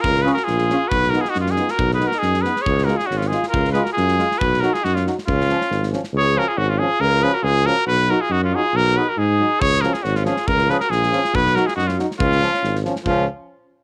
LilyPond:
<<
  \new Staff \with { instrumentName = "Trumpet" } { \time 2/4 \key des \mixolydian \tempo 4 = 138 bes'8 ces''16 bes'16 aes'4 | ces''8 bes'16 aes'16 ges'16 f'16 aes'8 | bes'8 ces''16 bes'16 aes'8 ces''8 | des''8 bes'16 aes'16 ges'16 f'16 aes'8 |
bes'8 ces''16 bes'16 aes'4 | ces''8 bes'16 aes'16 ges'16 f'16 r8 | f'4. r8 | des''8 bes'16 aes'16 ges'16 f'16 aes'8 |
bes'8 ces''16 bes'16 aes'8 bes'8 | ces''8 bes'16 aes'16 ges'16 f'16 aes'8 | bes'8 ces''16 bes'16 aes'4 | des''8 bes'16 aes'16 ges'16 f'16 aes'8 |
bes'8 ces''16 bes'16 aes'4 | ces''8 bes'16 aes'16 ges'16 f'16 r8 | f'4. r8 | f'8 r4. | }
  \new Staff \with { instrumentName = "Alto saxophone" } { \time 2/4 \key des \mixolydian f'8 aes'16 ges'16 f'4 | ges'8 ges'16 f'16 ees'16 des'16 f'8 | ges'8 aes'16 ges'16 ees'8 aes'8 | aes'8 ges'16 f'16 des'16 des'16 f'8 |
f'8 aes'16 ges'16 f'4 | ges'8 ges'16 f'16 ees'16 des'16 r8 | des'4. r8 | aes'8 ges'16 f'16 des'16 des'16 f'8 |
f'8 aes'16 ges'16 f'8 ges'8 | ges'8 ges'16 f'16 ees'16 des'16 f'8 | ges'8 aes'16 ges'16 ees'4 | aes'8 ges'16 f'16 des'16 des'16 f'8 |
f'8 aes'16 ges'16 f'4 | ges'8 ges'16 f'16 ees'16 des'16 r8 | des'4. r8 | des'8 r4. | }
  \new Staff \with { instrumentName = "French horn" } { \time 2/4 \key des \mixolydian r8 f'8 r8 f'8 | r8 ees'8 r8 ees'8 | r8 ees'8 r8 ees'8 | r8 f'8 r8 f'8 |
r8 f'8 r8 f'8 | r8 ees'8 r8 ees'8 | r8 des'8 r8 des'8 | r8 des'8 r8 des'8 |
r8 des'8 r8 des'8 | r8 ees'8 r8 ees'8 | r8 ees'8 r8 ees'8 | r8 des'8 r8 des'8 |
r8 des'8 r8 des'8 | r8 ees'8 r8 ees'8 | r8 des'8 r8 des'8 | des'8 r4. | }
  \new Staff \with { instrumentName = "Trombone" } { \clef bass \time 2/4 \key des \mixolydian r8 des'8 r8 des'8 | r8 ces'8 r8 ces'8 | r8 ces'8 r8 ces'8 | r8 aes8 r8 aes8 |
r8 aes8 r8 aes8 | r8 ges8 r8 ges8 | r8 f8 r8 f8 | r8 f8 r8 f8 |
r8 f8 r8 f8 | r8 ges8 r8 ges8 | r8 ges8 r8 ges8 | r8 f8 r8 f8 |
r8 f8 r8 f8 | r8 ges8 r8 ges8 | r8 f8 r8 f8 | f8 r4. | }
  \new Staff \with { instrumentName = "Tuba" } { \clef bass \time 2/4 \key des \mixolydian des,4 bes,,4 | ces,4 ges,4 | ces,4 ges,4 | des,4 aes,,4 |
des,4 ges,4 | ces,4 ges,4 | des,4 aes,,4 | des,4 aes,,4 |
des,4 des,4 | ces,4 ges,4 | ces,4 aes,4 | des,4 aes,,4 |
des,4 bes,,4 | ces,4 ges,4 | des,4 aes,,4 | des,8 r4. | }
  \new DrumStaff \with { instrumentName = "Drums" } \drummode { \time 2/4 bd16 sn16 sn16 sn16 sn16 sn16 sn8 | bd16 sn16 sn16 sn16 sn16 sn16 sn16 sn16 | bd16 sn16 sn16 sn16 sn16 sn16 sn16 sn16 | bd16 sn16 sn16 sn16 sn16 sn16 sn16 sn16 |
bd16 sn16 sn16 sn16 sn16 sn16 sn16 sn16 | bd16 sn16 sn16 sn16 sn16 sn16 sn16 sn16 | bd16 sn16 sn16 sn16 sn16 sn16 sn16 sn16 | r4 r4 |
r4 r4 | r4 r4 | r4 r4 | bd16 sn16 sn16 sn16 sn16 sn16 sn16 sn16 |
bd16 sn16 sn16 sn16 sn16 sn16 sn16 sn16 | bd16 sn16 sn16 sn16 sn16 sn16 sn16 sn16 | bd16 sn16 sn16 sn16 sn16 sn16 sn16 sn16 | bd4 r4 | }
>>